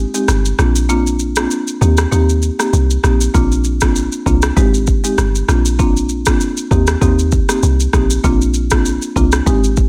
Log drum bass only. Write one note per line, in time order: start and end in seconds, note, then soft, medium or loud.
0.28 0.53 G1 medium
0.59 1.47 A#1 loud
1.81 2.06 D#2 loud
2.12 2.50 D#2 loud
2.73 2.98 C2 loud
3.04 3.29 A#1 medium
3.35 4.09 A#1 loud
4.26 4.51 C2 loud
4.57 4.95 G#1 loud
5.18 5.43 G1 medium
5.48 6.36 A#1 loud
6.71 6.96 D#2 loud
7.02 7.40 D#2 loud
7.63 7.88 C2 loud
7.94 8.18 A#1 medium
8.24 8.98 A#1 loud
9.16 9.41 C2 loud
9.47 9.85 G#1 loud